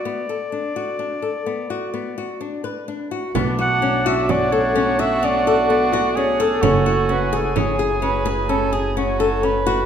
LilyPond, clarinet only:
\new Staff \with { instrumentName = "Clarinet" } { \time 7/4 \key b \dorian \tempo 4 = 128 d''1. r4 | r8 fis''4 e''8 d''8 cis''4 e''8 d''4 d''4 cis''8 a'8~ | a'4 b'8 a'8 gis'2 r2. | }